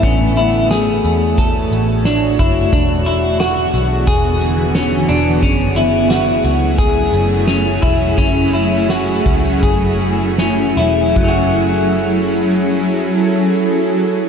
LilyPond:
<<
  \new Staff \with { instrumentName = "Clean electric guitar" } { \time 4/4 \key fis \minor \tempo 4 = 88 cis'8 e'8 gis'4 a'4 d'8 e'8 | d'8 e'8 fis'4 gis'4 cis'8 d'8 | cis'8 e'8 fis'4 gis'4 cis'8 e'8 | cis'8 e'8 fis'4 gis'4 cis'8 e'8 |
<fis a cis' fis'>1 | }
  \new Staff \with { instrumentName = "Ambient pad" } { \time 4/4 \key fis \minor <a fis' cis''>1 | <d e b gis'>1 | <fis a cis' e'>1~ | <fis a cis' e'>1 |
<fis cis' e' gis' a'>1 | }
  \new Staff \with { instrumentName = "Picked electric bass" } { \clef bass \time 4/4 \key fis \minor a,,4. e,4 a,,4 fis,,8 | e,,4. b,,8 e,,4. e,,8 | fis,,4. cis,4 fis,,4 e,,8 | fis,,4. cis,8 fis,,4. e,,8 |
fis,,1 | }
  \new DrumStaff \with { instrumentName = "Drums" } \drummode { \time 4/4 <hh bd>8 hh8 <hh sn>8 hh8 <hh bd>8 hh8 <hh sn>8 <hh bd>8 | <hh bd>8 hh8 <hh sn>8 hh8 <hh bd>8 hh8 <hh sn>8 hh8 | <hh bd>8 hh8 <hh sn>8 hh8 <hh bd>8 hh8 <hh sn>8 <hh bd>8 | <hh bd>8 hh8 <hh sn>8 <hh bd>8 <hh bd>8 hh8 <hh sn>8 hh8 |
<cymc bd>4 r4 r4 r4 | }
>>